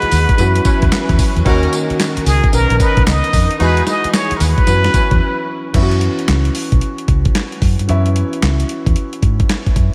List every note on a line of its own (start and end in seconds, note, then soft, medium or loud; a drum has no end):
0.00 0.36 E3 medium
0.00 0.37 E3 medium
0.00 0.36 G#3 medium
0.00 0.37 D#4 medium
0.00 0.37 F#4 medium
0.00 0.39 F#4 medium
0.00 0.37 G#4 medium
0.00 1.19 B4 loud
0.00 muted fingered electric bass stroke soft
0.00 closed hi-hat medium
0.11 0.25 D#2 medium
0.11 open hi-hat medium
0.11 tambourine medium
0.29 kick medium
0.29 closed hi-hat medium
0.38 0.58 F#2 loud
0.38 1.43 E3 medium
0.38 1.44 F#3 medium
0.38 1.44 B3 medium
0.38 2.51 C#4 medium
0.38 1.44 C#4 medium
0.38 1.44 E4 medium
0.38 1.44 F#4 medium
0.38 1.44 B4 medium
0.38 closed hi-hat medium
0.38 tambourine medium
0.56 closed hi-hat medium
0.65 0.85 C#4 medium
0.65 0.85 E4 medium
0.65 0.85 F#4 medium
0.65 0.85 B4 medium
0.65 muted fingered electric bass stroke soft
0.65 kick loud
0.65 closed hi-hat medium
0.65 tambourine medium
0.82 0.90 E2 medium
0.82 kick medium
0.82 closed hi-hat medium
0.92 muted fingered electric bass stroke soft
0.92 snare loud
0.92 clap medium
0.92 closed hi-hat medium
0.92 tambourine medium
1.09 1.16 E2 loud
1.09 kick medium
1.09 closed hi-hat medium
1.19 kick medium
1.19 open hi-hat medium
1.19 tambourine medium
1.36 1.43 E2 medium
1.36 closed hi-hat medium
1.45 1.66 D#2 loud
1.45 2.50 D#3 medium
1.45 2.52 D#3 medium
1.45 2.51 A#3 medium
1.45 1.71 C#4 loud
1.45 2.51 C#4 medium
1.45 1.71 D#4 loud
1.45 2.52 F#4 medium
1.45 1.71 F#4 loud
1.45 2.52 F#4 medium
1.45 3.58 A#4 medium
1.45 1.71 A#4 loud
1.45 kick loud
1.45 closed hi-hat medium
1.63 closed hi-hat medium
1.73 closed hi-hat medium
1.73 tambourine medium
1.90 muted fingered electric bass stroke soft
1.90 closed hi-hat medium
2.00 snare loud
2.00 clap medium
2.00 closed hi-hat medium
2.00 tambourine medium
2.17 muted fingered electric bass stroke soft
2.17 closed hi-hat medium
2.26 2.39 C#2 loud
2.26 2.56 G#4 medium
2.26 open hi-hat medium
2.26 tambourine medium
2.44 kick loud
2.44 closed hi-hat medium
2.52 2.66 B1 loud
2.52 3.57 D#3 medium
2.52 3.59 B3 medium
2.52 3.58 B3 medium
2.52 3.58 C#4 medium
2.52 4.65 D#4 medium
2.52 2.83 A#4 loud
2.52 3.59 A#4 medium
2.52 closed hi-hat medium
2.52 tambourine medium
2.70 2.77 A#1 loud
2.70 closed hi-hat medium
2.79 2.99 B3 medium
2.79 2.99 C#4 medium
2.79 2.99 D#4 medium
2.79 2.99 A#4 loud
2.79 3.10 B4 medium
2.79 kick medium
2.79 closed hi-hat medium
2.79 tambourine medium
2.97 3.04 B1 medium
2.97 kick medium
2.97 closed hi-hat medium
3.07 3.19 C#2 medium
3.07 3.63 D#5 loud
3.07 snare loud
3.07 clap medium
3.07 closed hi-hat medium
3.07 tambourine medium
3.24 closed hi-hat soft
3.33 3.46 F2 medium
3.33 kick medium
3.33 open hi-hat medium
3.33 tambourine medium
3.51 closed hi-hat medium
3.59 3.80 E2 loud
3.59 4.65 E3 medium
3.59 4.66 E3 medium
3.59 4.65 G#3 medium
3.59 3.85 D#4 loud
3.59 4.65 D#4 medium
3.59 3.85 E4 medium
3.59 4.66 F#4 medium
3.59 3.85 F#4 medium
3.59 4.66 F#4 medium
3.59 4.66 G#4 medium
3.59 3.85 G#4 loud
3.59 3.87 B4 loud
3.59 closed hi-hat medium
3.77 closed hi-hat medium
3.87 4.17 D#5 loud
3.87 snare medium
3.87 closed hi-hat medium
3.87 tambourine medium
4.04 muted fingered electric bass stroke soft
4.04 closed hi-hat medium
4.13 4.39 C#5 medium
4.13 snare loud
4.13 clap medium
4.13 closed hi-hat medium
4.13 tambourine loud
4.31 muted fingered electric bass stroke soft
4.31 closed hi-hat medium
4.37 4.53 D#2 loud
4.37 4.43 A#4 medium
4.37 open hi-hat medium
4.37 tambourine medium
4.42 5.48 B4 loud
4.58 kick loud
4.58 closed hi-hat medium
4.67 4.87 F#2 loud
4.67 5.72 E3 medium
4.67 5.73 F#3 medium
4.67 5.72 B3 medium
4.67 5.73 C#4 medium
4.67 5.73 E4 medium
4.67 5.73 F#4 medium
4.67 5.73 B4 medium
4.67 closed hi-hat medium
4.67 tambourine medium
4.84 snare medium
4.84 closed hi-hat medium
4.94 5.13 C#4 medium
4.94 5.13 E4 medium
4.94 5.13 F#4 medium
4.94 5.14 B4 medium
4.94 muted fingered electric bass stroke soft
4.94 kick medium
4.94 closed hi-hat medium
4.94 tambourine medium
5.11 5.18 E2 medium
5.11 kick medium
5.11 closed hi-hat medium
5.74 6.07 F#2 loud
5.74 7.84 E3 medium
5.74 7.85 B3 medium
5.74 7.85 C#4 medium
5.74 5.83 E4 medium
5.74 kick loud
5.74 closed hi-hat medium
5.74 crash medium
5.82 7.89 F#4 medium
5.91 closed hi-hat medium
6.01 closed hi-hat medium
6.19 closed hi-hat medium
6.28 6.48 C#2 medium
6.28 snare loud
6.28 clap medium
6.28 closed hi-hat medium
6.45 closed hi-hat medium
6.55 open hi-hat medium
6.72 6.79 B1 medium
6.72 kick medium
6.72 closed hi-hat medium
6.81 closed hi-hat medium
6.98 closed hi-hat medium
7.08 7.28 C#2 medium
7.08 kick medium
7.08 closed hi-hat medium
7.25 kick medium
7.25 closed hi-hat soft
7.35 snare loud
7.35 clap medium
7.35 closed hi-hat medium
7.52 closed hi-hat soft
7.62 7.75 F#2 medium
7.62 kick medium
7.62 open hi-hat medium
7.79 7.86 G2 medium
7.79 closed hi-hat soft
7.88 8.21 F#2 loud
7.88 9.94 E3 medium
7.88 9.94 B3 medium
7.88 9.94 C#4 medium
7.88 9.94 E4 medium
7.88 closed hi-hat medium
8.06 closed hi-hat medium
8.16 closed hi-hat medium
8.33 closed hi-hat medium
8.42 8.62 C#2 medium
8.42 snare medium
8.42 clap medium
8.42 closed hi-hat medium
8.60 closed hi-hat medium
8.69 closed hi-hat medium
8.86 8.93 E2 medium
8.86 kick loud
8.86 closed hi-hat soft
8.96 closed hi-hat medium
9.13 closed hi-hat medium
9.23 9.42 G#2 medium
9.23 kick medium
9.23 closed hi-hat medium
9.40 kick medium
9.40 closed hi-hat medium
9.49 snare loud
9.49 clap medium
9.49 closed hi-hat medium
9.66 kick medium
9.66 closed hi-hat soft
9.76 9.89 F#2 medium
9.76 kick loud
9.76 closed hi-hat medium